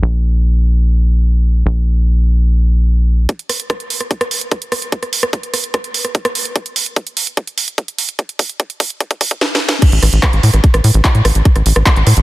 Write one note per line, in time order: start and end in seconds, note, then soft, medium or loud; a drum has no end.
0.03 1.64 A#1 medium
1.66 3.27 A#1 medium
3.29 kick loud
3.29 closed hi-hat medium
3.39 closed hi-hat medium
3.49 cross-stick soft
3.49 open hi-hat loud
3.60 closed hi-hat medium
3.70 kick loud
3.70 cross-stick medium
3.70 closed hi-hat medium
3.80 closed hi-hat medium
3.90 open hi-hat loud
4.00 cross-stick soft
4.00 closed hi-hat medium
4.11 kick loud
4.11 closed hi-hat medium
4.21 cross-stick medium
4.21 closed hi-hat medium
4.31 open hi-hat loud
4.41 closed hi-hat medium
4.51 kick loud
4.51 cross-stick soft
4.51 closed hi-hat medium
4.62 closed hi-hat medium
4.72 cross-stick medium
4.72 open hi-hat loud
4.82 closed hi-hat medium
4.92 kick loud
4.92 closed hi-hat medium
5.03 cross-stick soft
5.03 closed hi-hat medium
5.13 open hi-hat loud
5.23 cross-stick medium
5.33 kick loud
5.33 closed hi-hat medium
5.43 closed hi-hat medium
5.54 cross-stick soft
5.54 open hi-hat loud
5.64 closed hi-hat medium
5.74 kick loud
5.74 cross-stick medium
5.74 closed hi-hat medium
5.84 closed hi-hat medium
5.94 open hi-hat loud
6.05 cross-stick soft
6.05 closed hi-hat medium
6.15 kick loud
6.15 closed hi-hat medium
6.25 cross-stick medium
6.25 closed hi-hat medium
6.35 open hi-hat loud
6.45 closed hi-hat medium
6.56 kick loud
6.56 closed hi-hat medium
6.66 closed hi-hat medium
6.76 open hi-hat loud
6.86 closed hi-hat medium
6.96 kick loud
6.96 closed hi-hat medium
7.07 closed hi-hat medium
7.17 open hi-hat loud
7.27 closed hi-hat medium
7.37 kick loud
7.37 closed hi-hat medium
7.47 closed hi-hat medium
7.58 open hi-hat loud
7.68 closed hi-hat medium
7.78 kick loud
7.78 closed hi-hat medium
7.88 closed hi-hat medium
7.98 open hi-hat loud
8.09 closed hi-hat medium
8.19 kick loud
8.19 closed hi-hat medium
8.29 closed hi-hat medium
8.39 kick loud
8.39 open hi-hat loud
8.49 closed hi-hat medium
8.60 kick loud
8.60 closed hi-hat medium
8.70 closed hi-hat medium
8.80 kick loud
8.80 open hi-hat loud
8.90 closed hi-hat medium
9.00 kick loud
9.00 closed hi-hat medium
9.11 kick medium
9.11 closed hi-hat medium
9.21 kick loud
9.21 open hi-hat loud
9.31 kick medium
9.31 closed hi-hat medium
9.41 snare medium
9.55 snare medium
9.69 snare loud
9.82 kick loud
9.82 closed hi-hat medium
9.82 crash loud
9.92 9.99 A1 medium
9.92 closed hi-hat medium
10.03 10.09 A1 loud
10.03 cross-stick soft
10.03 open hi-hat loud
10.13 10.20 A1 medium
10.13 closed hi-hat medium
10.23 kick loud
10.23 cross-stick medium
10.23 clap loud
10.23 closed hi-hat medium
10.33 10.40 A1 medium
10.33 closed hi-hat medium
10.43 10.50 A2 loud
10.43 open hi-hat loud
10.54 10.60 A1 medium
10.54 cross-stick soft
10.54 closed hi-hat medium
10.64 kick loud
10.64 closed hi-hat medium
10.74 10.81 A1 medium
10.74 cross-stick medium
10.74 closed hi-hat medium
10.84 10.91 A2 loud
10.84 open hi-hat loud
10.94 11.01 A1 medium
10.94 closed hi-hat medium
11.05 kick loud
11.05 cross-stick soft
11.05 clap loud
11.05 closed hi-hat medium
11.15 11.22 A2 medium
11.15 closed hi-hat medium
11.25 11.32 A1 loud
11.25 cross-stick medium
11.25 open hi-hat loud
11.35 11.42 A1 loud
11.35 closed hi-hat medium
11.45 kick loud
11.45 closed hi-hat medium
11.56 11.62 A1 medium
11.56 cross-stick soft
11.56 closed hi-hat medium
11.66 11.73 A1 loud
11.66 open hi-hat loud
11.76 11.83 A1 medium
11.76 cross-stick medium
11.76 closed hi-hat medium
11.86 kick loud
11.86 clap loud
11.86 closed hi-hat medium
11.96 12.03 A1 medium
11.96 clap soft
11.96 closed hi-hat medium
12.07 12.13 A2 loud
12.07 cross-stick soft
12.07 open hi-hat loud
12.17 12.22 A1 medium
12.17 closed hi-hat medium